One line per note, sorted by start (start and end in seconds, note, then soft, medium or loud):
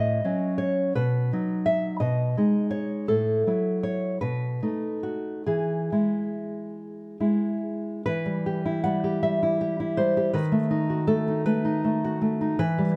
0.00 0.24 A2 soft
0.00 0.57 D#5 medium
0.24 0.92 F#3 soft
0.24 0.92 C#4 soft
0.58 0.94 C#5 medium
0.95 1.31 B2 soft
0.95 1.63 B4 medium
1.33 1.98 F#3 soft
1.33 1.98 D#4 soft
1.66 1.99 E5 medium
2.00 2.35 B2 soft
2.00 2.68 D#5 medium
2.37 3.05 G#3 soft
2.37 3.05 D#4 soft
2.71 3.06 C#5 medium
3.08 3.44 A2 soft
3.08 3.80 A4 medium
3.47 4.18 F#3 soft
3.47 4.18 E4 soft
3.83 4.20 C#5 medium
4.21 4.60 B2 soft
4.21 4.99 B4 medium
4.62 5.43 A3 soft
4.62 5.43 D#4 soft
5.03 5.45 F#4 soft
5.46 5.90 E3 soft
5.46 7.61 G#4 medium
5.92 7.17 G#3 soft
5.92 7.17 E4 soft
7.20 8.02 G#3 soft
7.20 8.03 E4 soft
8.06 10.31 E3 soft
8.06 8.65 B4 medium
8.26 8.84 G3 soft
8.46 8.83 G4 soft
8.65 9.41 E4 soft
8.84 9.22 G3 soft
8.84 9.21 F#5 medium
9.04 9.60 G4 soft
9.23 9.97 G3 soft
9.23 9.94 E5 medium
9.43 9.79 E4 soft
9.61 10.16 G4 soft
9.80 10.35 E4 soft
9.97 10.35 G3 soft
9.97 10.33 C5 medium
10.17 10.35 G4 soft
10.33 12.56 D#3 medium
10.33 11.06 B4 medium
10.52 11.06 A3 soft
10.71 11.27 D#4 soft
10.90 12.03 F#4 soft
11.07 11.45 A3 soft
11.07 11.44 A4 medium
11.28 11.64 D#4 soft
11.46 11.83 A3 soft
11.46 12.55 B4 medium
11.65 12.40 D#4 soft
11.84 12.20 A3 soft
12.04 12.60 F#4 soft
12.22 12.60 A3 soft
12.41 12.60 D#4 soft
12.59 12.96 E3 medium
12.59 12.96 B4 medium
12.78 12.96 G3 soft